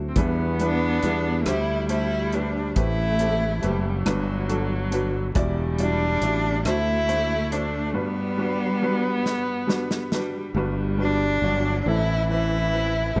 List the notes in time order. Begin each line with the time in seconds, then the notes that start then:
Already playing: D2 D3 F#3 D4 E4 F#4 C5
0.09 C4
0.16 E2 E3 G3 B3 D4 E4 B4, kick, closed hi-hat
0.60 G3 D4 E4 B4, closed hi-hat
1.03 E2 G3 D4 E4 B4, closed hi-hat
1.46 D2 D3 G3 A3 D4 G4 C5, cross-stick, closed hi-hat
1.50 E4
1.89 A3 D4 E4 G4 C5, closed hi-hat
2.33 A3 D4 G4 B4, closed hi-hat
2.76 A1 A2 A3 C4 E4 G4 B4, kick, closed hi-hat
3.19 A3 C4 G4 A4, closed hi-hat
3.62 F#1 G3 A3 C4 G4 B4, closed hi-hat
4.05 G1 G2 F#3 D4 F#4 B4, cross-stick, closed hi-hat
4.49 F#3 D4 F#4 A4, closed hi-hat
4.91 F#3 D4 F#4 B4, closed hi-hat
5.34 E1 E2 E3 G3 E4 F#4 D5, kick, closed hi-hat
5.79 G3 D4 E4 F#4 D5, closed hi-hat
6.22 A1 G3 E4 F#4 D5, closed hi-hat
6.65 D2 D3 A3 D4 E4 F#4 C5, cross-stick, closed hi-hat
7.08 A3 D4 F#4 C5, closed hi-hat
7.52 A3 D4 F#4 C5, closed hi-hat
7.93 G1 G2 G3 B3 D4 F#4 B4
8.38 G3 D4 F#4 B4
8.82 G3 D4 F#4 B4
9.26 snare
9.67 G3 D4 F#4 B4, snare
9.91 snare
10.12 G3 D4 F#4 B4, snare
10.55 G1 G2 G3 D4 F#4 B4
10.98 G3 D4 F#4 B4
11.42 G1 F#3 D4 F#4 D5
11.82 D4
11.86 A1 A2 E3 C4 E4 A4
12.30 E3 C4 E4 B4
12.73 E3 C4 E4 B4
13.16 A1 A2 G3 C4 A4